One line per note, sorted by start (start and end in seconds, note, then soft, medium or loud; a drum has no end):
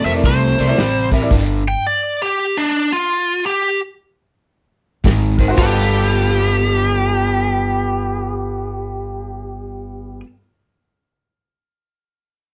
0.04 0.22 F2 medium
0.04 0.22 C3 medium
0.04 0.22 A3 medium
0.04 0.09 A#4 soft
0.04 0.10 C5 soft
0.04 0.10 E5 medium
0.04 closed hi-hat medium
0.13 0.23 E4 medium
0.13 0.24 A#4 medium
0.13 0.24 D5 medium
0.24 0.56 C2 medium
0.24 0.55 C3 medium
0.24 0.55 A3 medium
0.24 1.09 C5 medium
0.24 kick loud
0.24 closed hi-hat medium
0.57 0.76 C2 medium
0.57 0.75 C3 medium
0.57 0.76 A3 medium
0.57 0.63 A#4 soft
0.57 0.63 D5 soft
0.57 closed hi-hat medium
0.67 0.77 E4 medium
0.67 0.77 A#4 medium
0.67 0.78 D5 medium
0.77 1.27 A1 medium
0.77 1.09 C3 medium
0.77 1.09 G3 medium
0.77 snare loud
0.77 closed hi-hat medium
1.11 1.29 C3 medium
1.11 1.29 G3 medium
1.11 1.16 A#4 soft
1.11 1.17 E5 medium
1.11 kick medium
1.11 closed hi-hat medium
1.21 1.31 E4 medium
1.21 1.31 A#4 medium
1.21 1.31 D5 medium
1.31 1.73 G1 medium
1.31 1.62 G2 medium
1.31 1.62 D3 medium
1.31 kick loud
1.31 closed hi-hat medium
1.31 crash medium
1.68 1.84 G5 medium
1.87 2.20 D5 loud
2.22 2.55 G4 medium
2.57 2.91 D4 medium
2.92 3.43 F4 medium
3.46 3.79 G4 medium
5.04 5.54 G#1 medium
5.04 5.35 G#2 medium
5.04 5.36 D#3 medium
5.04 kick medium
5.04 snare loud
5.04 closed hi-hat medium
5.38 5.56 G#2 medium
5.38 5.56 D#3 medium
5.38 5.43 A#4 soft
5.38 5.44 C5 medium
5.38 kick medium
5.38 closed hi-hat medium
5.48 5.58 F#4 medium
5.48 5.58 A#4 medium
5.48 5.59 C5 medium
5.54 10.19 G1 medium
5.54 10.22 G3 medium
5.54 10.24 B3 medium
5.54 10.16 F4 medium
5.54 10.19 A4 medium
5.54 kick loud
5.54 crash medium
5.59 10.25 F4 medium
5.59 10.20 G4 medium
5.59 10.26 A4 loud
5.59 10.23 B4 medium